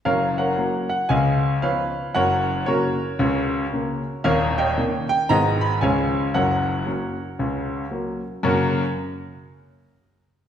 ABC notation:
X:1
M:4/4
L:1/8
Q:"Swing" 1/4=115
K:F#
V:1 name="Grand piano"
[Ace] [Acf]2 f [deg]2 [Bce]2 | [Acf]2 [FAc]6 | [Ace] [cd=g]2 g [da] b [ce^g]2 | [Acf]6- [Acf] z |
[F,,C,A,CFA] z6 z |]
V:2 name="Grand piano" clef=bass
[F,,,F,,]2 [F,A,C]2 [C,,C,]2 [E,B,D]2 | [F,,,F,,]2 [C,A,C]2 [C,,C,]2 [C,A,C]2 | [D,,,D,,]2 [D,A,C]2 [G,,,G,,D,G,B,]2 [C,,C,E,G,C]2 | [F,,,F,,]2 [F,A,C]2 [C,,C,]2 [F,A,C]2 |
z8 |]